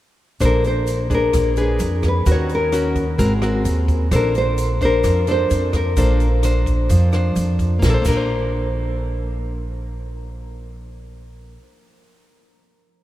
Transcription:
0.40 upright bass A#1, nylon-string guitar A#3 D4 A4 C5, kick, cross-stick, closed hi-hat, shaker
0.45 nylon-string guitar A#4
0.64 nylon-string guitar C5, closed hi-hat, shaker
0.87 closed hi-hat, shaker
1.10 nylon-string guitar D4 G#4, kick, closed hi-hat, shaker
1.14 nylon-string guitar A#4
1.33 upright bass A#1, nylon-string guitar A#3, kick, cross-stick, closed hi-hat, shaker
1.56 nylon-string guitar D4 G#4 B4, closed hi-hat, shaker
1.61 nylon-string guitar G#4
1.79 upright bass F2, closed hi-hat, shaker
2.03 kick, cross-stick, closed hi-hat, shaker
2.08 nylon-string guitar B4
2.26 upright bass D#2, nylon-string guitar D#3 C#4 F#4 A#4, kick, closed hi-hat, shaker
2.31 nylon-string guitar C#5
2.49 closed hi-hat, shaker
2.55 nylon-string guitar A#4
2.72 nylon-string guitar C#4 F#4 A#4, cross-stick, closed hi-hat, shaker
2.95 kick, closed hi-hat, shaker
3.18 upright bass G#1, nylon-string guitar G#3 C4 F#4 A#4, kick, closed hi-hat, shaker
3.42 nylon-string guitar C4 F#4 A#4, cross-stick, closed hi-hat, shaker
3.65 upright bass D#2, closed hi-hat, shaker
3.88 kick, closed hi-hat, shaker
4.11 upright bass A#1, nylon-string guitar A#3 D4 A4 C5, kick, cross-stick, closed hi-hat, shaker
4.15 nylon-string guitar A#4
4.35 nylon-string guitar C5, closed hi-hat, shaker
4.58 closed hi-hat, shaker
4.81 nylon-string guitar D4 A#4 C5, kick, closed hi-hat, shaker
5.04 upright bass F2, nylon-string guitar F3, kick, cross-stick, closed hi-hat, shaker
5.27 nylon-string guitar D4 A4 C5, closed hi-hat, shaker
5.31 nylon-string guitar C5
5.50 upright bass F2, closed hi-hat, shaker
5.73 nylon-string guitar A#4, kick, cross-stick, closed hi-hat, shaker
5.97 upright bass A#1, nylon-string guitar A#3 D4 A4 C5, kick, closed hi-hat, shaker
6.20 closed hi-hat, shaker
6.43 nylon-string guitar D4 C5, cross-stick, closed hi-hat, shaker
6.66 kick, closed hi-hat, shaker
6.90 upright bass F2, nylon-string guitar F3, kick, closed hi-hat, shaker
7.12 nylon-string guitar D4 C5, cross-stick, closed hi-hat, shaker
7.36 upright bass F2, closed hi-hat, shaker
7.59 kick, closed hi-hat, shaker
7.79 upright bass A#1, nylon-string guitar A#3, kick, snare, shaker
7.85 nylon-string guitar D4 A#4
7.90 nylon-string guitar A4
7.94 nylon-string guitar C5
8.02 upright bass A#1, nylon-string guitar A#3, kick, crash, shaker
8.08 nylon-string guitar D4 A#4
8.17 nylon-string guitar C5

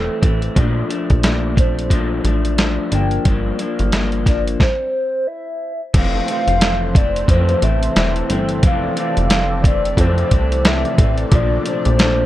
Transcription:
Already playing: clean electric guitar E3 A3 C4, soft synth lead A4
0.22 analog synth bass A1, clean electric guitar E3 A3 C4, kick, closed hi-hat
0.42 closed hi-hat
0.55 analog synth bass A#1, clean electric guitar A#2 F3 A3 D4, kick, closed hi-hat
0.89 clean electric guitar F3 A3 D4, closed hi-hat
1.10 analog synth bass A#1, kick, closed hi-hat
1.22 clean electric guitar A#2 F3 A3 D4, snare, closed hi-hat
1.56 clean electric guitar F3 A3 D4, soft synth lead C5, kick, closed hi-hat
1.79 closed hi-hat
1.90 clean electric guitar A#2 F3 A3 D4, kick, closed hi-hat
2.24 analog synth bass A1, clean electric guitar F3 A3 D4, closed hi-hat
2.45 closed hi-hat
2.58 clean electric guitar F3 A3 D4, snare, closed hi-hat
2.91 analog synth bass G1, clean electric guitar F3 A#3 D4, soft synth lead G5, closed hi-hat
3.11 closed hi-hat
3.25 analog synth bass G1, clean electric guitar G2 F3 A#3 D4, kick, closed hi-hat
3.58 clean electric guitar F3 A#3 D4, closed hi-hat
3.79 analog synth bass G1, closed hi-hat
3.92 clean electric guitar G2 F3 A#3 D4, snare, closed hi-hat
4.12 closed hi-hat
4.25 clean electric guitar F3 A#3 D4, soft synth lead D5, kick, snare, closed hi-hat
4.48 closed hi-hat
4.60 soft synth lead C5, kick, snare
5.27 soft synth lead E5
5.93 analog synth bass F1, clean electric guitar F2 E3 A3 C4, analog synth pad C3 E3 C4 A4 C5, kick, closed hi-hat, crash
5.97 soft synth lead F5
6.27 clean electric guitar E3 A3 C4, soft synth lead F5, closed hi-hat
6.47 analog synth bass F1, closed hi-hat
6.61 clean electric guitar F2 E3 A3 C4, snare, closed hi-hat
6.94 clean electric guitar E3 A3 C4, soft synth lead D5, kick, closed hi-hat
7.16 closed hi-hat
7.28 clean electric guitar F2 E3 A3 C4, analog synth bass F2, soft synth lead C5, kick, closed hi-hat
7.49 closed hi-hat
7.62 analog synth bass A1, clean electric guitar E3 A3 C4, soft synth lead E5, closed hi-hat
7.83 closed hi-hat
7.96 analog synth bass E1, clean electric guitar E3 A3 C4, snare, closed hi-hat
8.16 closed hi-hat
8.29 analog synth bass G1, clean electric guitar E3 A3 C4, closed hi-hat
8.49 closed hi-hat
8.63 analog synth bass F1, clean electric guitar F2 E3 A3 C4, analog synth pad D5, soft synth lead F5, kick, closed hi-hat
8.96 clean electric guitar E3 A3 C4, soft synth lead F5, closed hi-hat
9.17 analog synth bass F1, closed hi-hat
9.30 clean electric guitar F2 E3 A3 C4, snare, closed hi-hat
9.63 clean electric guitar E3 A3 C4, soft synth lead D5, kick, closed hi-hat
9.85 closed hi-hat
9.97 clean electric guitar F2 E3 A3 C4, analog synth bass F2, soft synth lead C5, kick, closed hi-hat
10.18 closed hi-hat
10.31 analog synth bass C2, clean electric guitar E3 A3 C4, kick, closed hi-hat
10.52 closed hi-hat
10.64 clean electric guitar F2 E3 A3 C4, soft synth lead E5, snare, closed hi-hat
10.85 closed hi-hat
10.98 analog synth bass A1, clean electric guitar E3 A3 C4, kick, closed hi-hat
11.18 closed hi-hat
11.31 analog synth bass A#1, clean electric guitar A#2 F3 A3 D4, analog synth pad A#2 D4, soft synth lead D5, kick, closed hi-hat
11.65 clean electric guitar F3 A3 D4, soft synth lead C5, closed hi-hat
11.85 analog synth bass A#1, closed hi-hat
11.98 clean electric guitar A#2 F3 A3 D4, snare, closed hi-hat

